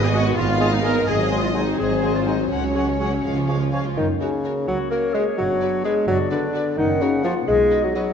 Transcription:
Already playing: tuba G#1, double bass section G#1, french horn section D#3 B3, violin section D#5
0.02 viola section G#3 D#4, clarinet G#4, cello section G#4, violin section B4
0.13 bassoon G#3, viola section B3 G#4, cello section F#4, clarinet F#4, cor anglais D#5, violin section D#5, flute G#5
0.25 viola section G#3 D#4, violin section B4
0.36 double bass section G#1, tuba G#1, viola section B3 G#4, cello section F4, clarinet F4, violin section D#5 F5
0.47 viola section G#3 D#4, violin section B4
0.59 bassoon G#3, viola section B3 G#4, cor anglais D#5, violin section D#5, flute G#5
0.71 viola section G#3 D#4, cello section D#4, clarinet D#4, violin section B4
0.82 bassoon G#3, viola section B3 G#4, cello section A#4, clarinet A#4, cor anglais D#5, violin section D#5, flute G#5
0.94 viola section G#3 D#4, violin section B4
1.06 double bass section G#1, tuba G#1, french horn section F#3 C4, viola section G#3 G#4, cello section G#4, clarinet G#4, violin section D#5
1.18 viola section F#3 F#4, violin section C5
1.29 bassoon F#3, viola section G#3 G#4, cor anglais C5, violin section D#5, flute G#5
1.42 viola section F#3 F#4, clarinet F4, cello section F4, violin section C5
1.54 bassoon F#3, viola section G#3 G#4, cello section D#4, clarinet D#4, cor anglais C5, violin section D#5, flute G#5
1.66 viola section F#3 F#4, violin section C5
1.77 double bass section G#1, tuba G#1, viola section G#3 G#4, cello section G#4, clarinet G#4, violin section C5 D#5
1.89 viola section F#3 F#4, violin section C5
2.02 bassoon F#3, viola section G#3 G#4, cor anglais C5, violin section D#5, flute G#5
2.14 viola section F#3 F#4, cello section F4, clarinet F4, violin section C5
2.26 bassoon F#3, viola section G#3 G#4, cello section D#4, clarinet D#4, cor anglais C5, violin section D#5, flute G#5
2.39 viola section F#3 F#4, violin section C5
2.50 double bass section C#2, tuba C#2, viola section G#3 G#4, cello section C#4, clarinet C#4, french horn section C#4, violin section C#5 F#5
2.63 viola section F#3 F#4, violin section C#5
2.75 bassoon F#3, viola section G#3 G#4, cor anglais C#5, violin section F#5, flute G#5
2.88 viola section F#3 F#4, violin section C#5
2.99 bassoon F#3, viola section G#3 G#4, cor anglais C#5, violin section F#5, flute G#5
3.12 viola section F#3 F#4, violin section C#5
3.24 tuba C#2, double bass section C#2, french horn section F3, viola section G#3 G#4, violin section F5
3.36 viola section F3 F4, violin section C#5
3.48 bassoon F3, viola section G#3 G#4, cor anglais C#5, violin section F5, flute G#5
3.60 viola section F3 F4, violin section C#5
3.72 bassoon F3, viola section G#3 G#4, cor anglais C#5, violin section F5, flute G#5
3.85 viola section F3 F4, violin section C#5
3.97 double bass section F#1, cello section F#2, bassoon D#3, french horn section A#3 C#4, clarinet D#4, marimba D#4
4.20 bassoon C#3, clarinet C#4, marimba C#4, viola section F#4, violin section A#4 C#5
4.44 viola section F#4, violin section A#4 C#5
4.67 cello section C#2, double bass section C#2, bassoon F#3, clarinet F#4, marimba F#4, flute C#5
4.90 bassoon A#3, viola section F#4, clarinet A#4, violin section A#4 C#5, marimba A#4
5.14 bassoon G#3, viola section F#4, clarinet G#4, marimba G#4, violin section A#4 C#5
5.38 double bass section F#1, cello section F#2, bassoon F#3, french horn section B3 D4, clarinet F#4, marimba F#4
5.61 viola section F#4, violin section B4 D5
5.84 bassoon G#3, viola section F#4, clarinet G#4, marimba G#4, violin section B4 D5
6.07 double bass section F#1, cello section F#2, bassoon F#3, clarinet F#4, marimba F#4, flute D5
6.31 bassoon D3, clarinet D4, marimba D4, viola section F#4, violin section B4 D5
6.54 viola section F#4, violin section B4 D5
6.77 double bass section F#1, cello section F#2, bassoon D#3, french horn section A#3 C#4, clarinet D#4, marimba D#4, flute F#5
7.00 bassoon C#3, clarinet C#4, marimba C#4, viola section F#4, violin section A#4 C#5
7.24 bassoon F3, clarinet F4, marimba F4, viola section F#4, violin section A#4 C#5
7.47 double bass section B1, cello section B2, bassoon G#3, french horn section B3 D#4, marimba G#4, clarinet G#4, flute D#5
7.71 viola section F#4, violin section B4 D#5
7.83 bassoon F#3, clarinet F#4, marimba F#4
7.95 bassoon F#3, marimba F#4, clarinet F#4, viola section F#4, violin section B4 D#5

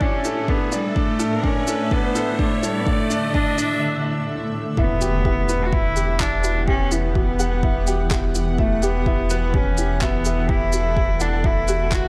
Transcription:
Already playing: ambient pad A2 A3 E4 E5, upright piano A4 D5, riser
0.00 cello C#4, upright piano D4, synth arpeggio sound D4, kick
0.25 synth arpeggio sound E4, upright piano A4, shaker
0.48 cello B3, upright piano D4, synth arpeggio sound A4, kick
0.72 cello G3, synth arpeggio sound D4, upright piano D5, ambient pad E5, shaker
0.96 cello A3, synth arpeggio sound D4, upright piano D4, kick
1.19 synth arpeggio sound E4, upright piano A4, shaker
1.43 cello C#4, upright piano D4, synth arpeggio sound D4, kick
1.52 ambient pad D3
1.67 synth arpeggio sound E4, upright piano A4, shaker
1.91 cello B3, synth arpeggio sound D4, upright piano D4, kick
2.15 synth arpeggio sound E4, upright piano A4, shaker
2.39 cello A3, synth arpeggio sound D4, upright piano D4, kick
2.63 cello G3, synth arpeggio sound E4, upright piano A4, shaker
2.80 cello B3
2.86 cello A3, synth arpeggio sound D4, upright piano D4, kick
3.10 synth arpeggio sound D4, upright piano D4, shaker
3.34 synth arpeggio sound D4, upright piano D4, cello D4, kick
3.58 synth arpeggio sound D4, upright piano D4, shaker
4.77 sub bass E1, ambient pad E3 B3, cello B3, synth arpeggio sound E4, upright piano E4, kick, impact
4.86 ambient pad F#5
5.01 synth arpeggio sound F#4, upright piano G4, ambient pad G4, shaker
5.25 upright piano E4, synth arpeggio sound G4, kick
5.49 synth arpeggio sound E4, upright piano B4, shaker
5.65 cello F#4
5.73 cello E4, synth arpeggio sound F#4, kick
5.96 synth arpeggio sound G4, upright piano G4, shaker
6.20 cello D4, synth arpeggio sound E4, upright piano E5, kick, clap
6.44 upright piano E4, synth arpeggio sound F#4, shaker
6.68 cello C#4, synth arpeggio sound G4, upright piano G4, kick
6.91 cello B3, upright piano E4, synth arpeggio sound E4, shaker
7.15 synth arpeggio sound F#4, kick
7.39 synth arpeggio sound G4, upright piano F#5, shaker
7.63 synth arpeggio sound E4, upright piano E4, kick
7.87 synth arpeggio sound F#4, upright piano G4, shaker
8.11 upright piano E4, synth arpeggio sound G4, kick, clap
8.35 synth arpeggio sound E4, shaker
8.58 cello A3, upright piano E4, synth arpeggio sound F#4, kick
8.82 cello B3, upright piano G4, synth arpeggio sound G4, shaker
9.06 upright piano E4, synth arpeggio sound E4, kick
9.30 synth arpeggio sound F#4, ambient pad A4, upright piano B4, shaker
9.54 cello C#4, synth arpeggio sound G4, kick
9.78 synth arpeggio sound E4, upright piano G4, shaker
10.01 cello B3, synth arpeggio sound F#4, upright piano E5, kick, clap
10.25 upright piano E4, synth arpeggio sound G4, shaker
10.49 synth arpeggio sound E4, cello E4, upright piano G4, kick
10.73 upright piano E4, synth arpeggio sound F#4, shaker
10.97 synth arpeggio sound G4, kick
11.20 cello D4, synth arpeggio sound E4, upright piano F#5, shaker
11.44 upright piano E4, cello E4, synth arpeggio sound F#4, kick
11.68 upright piano F#4, synth arpeggio sound G4, shaker
11.92 upright piano E4, synth arpeggio sound E4, cello F#4, kick, clap

